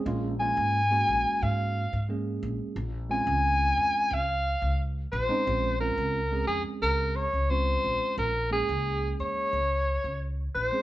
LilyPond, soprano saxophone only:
\new Staff \with { instrumentName = "Soprano saxophone" } { \time 4/4 \key bes \minor \tempo 4 = 89 r8 aes''4. f''4 r4 | r8 aes''4. f''4 r8 c''8~ | c''8 bes'4 aes'8 bes'8 des''8 c''4 | bes'8 aes'4 des''4. r8 c''8 | }